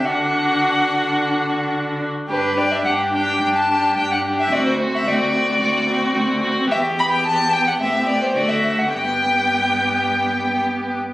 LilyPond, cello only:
\new Staff \with { instrumentName = "Cello" } { \clef bass \time 4/4 \key g \major \tempo 4 = 107 d2.~ d8 r8 | g,4 g,4 g,4 g,4 | d,4 d,4 d,4 d,4 | e,2 a,4 d4 |
g,2.~ g,8 r8 | }